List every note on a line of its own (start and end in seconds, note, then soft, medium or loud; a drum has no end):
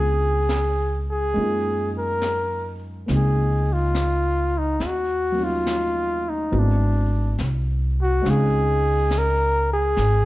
0.00 1.31 C#2 medium
0.00 1.32 G#3 soft
0.00 1.35 B3 soft
0.00 1.35 C#4 soft
0.00 1.36 D4 soft
0.00 1.37 F4 soft
0.00 1.05 G#4 medium
0.49 snare soft
0.49 hi-hat pedal soft
1.11 1.91 G#4 medium
1.34 3.04 F#2 medium
1.34 4.79 G#3 soft
1.34 3.05 A#3 soft
1.34 4.80 C#4 soft
1.34 brush sweep soft
1.38 3.09 D#4 soft
1.38 4.82 F4 soft
1.98 2.78 A#4 medium
2.22 snare soft
2.22 hi-hat pedal soft
3.06 4.76 C#2 medium
3.06 4.79 A#3 soft
3.06 4.80 C4 soft
3.06 brush sweep soft
3.06 snare soft
3.10 4.81 D#4 soft
3.16 3.75 G#4 medium
3.73 4.60 F4 medium
3.95 snare soft
3.95 hi-hat pedal soft
4.58 4.89 D#4 medium
4.80 6.48 D#2 medium
4.80 brush sweep soft
4.80 snare soft
4.87 5.46 F#4 medium
5.32 6.49 F#3 soft
5.32 6.50 A#3 soft
5.38 6.52 C#4 soft
5.38 6.54 D#4 soft
5.43 6.55 F4 soft
5.43 6.31 F4 medium
5.67 snare soft
5.67 hi-hat pedal soft
6.29 6.60 D#4 medium
6.51 7.34 G#1 medium
6.51 8.20 G#3 soft
6.51 8.24 B3 soft
6.51 8.22 C4 soft
6.51 8.24 E4 soft
6.51 8.24 F#4 soft
6.51 brush sweep soft
6.59 7.41 D4 medium
7.38 8.21 C2 medium
7.38 snare soft
7.38 hi-hat pedal soft
8.02 8.32 F#4 medium
8.22 9.92 C#2 medium
8.22 10.25 G#3 soft
8.22 10.25 C4 soft
8.22 10.25 C#4 soft
8.22 brush sweep soft
8.22 snare soft
8.26 10.25 D#4 soft
8.26 10.25 F5 medium
8.30 9.20 G#4 medium
9.11 snare soft
9.11 hi-hat pedal soft
9.18 9.71 A#4 loud
9.73 10.25 G#4 medium
9.97 10.25 G#1 medium
9.97 brush sweep soft
9.97 snare soft